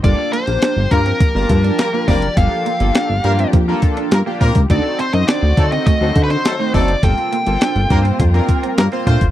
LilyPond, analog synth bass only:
\new Staff \with { instrumentName = "Analog synth bass" } { \clef bass \time 4/4 \key g \minor \tempo 4 = 103 g,,16 r8 bes,,16 r16 g,,16 g,8 r16 g,,16 g,8 r8 fis,,8 | g,,16 r8 g,,16 r16 g,,16 g,8 f,8 r8 g,16 r16 bes,16 cis,16 | d,16 r8 fis,16 r16 d,16 d8 r16 d,16 d8 r8 fis,,8 | g,,16 r8 g,,16 r16 g,,16 g,8 f,8 r8 g,16 r16 bes,16 fis,,16 | }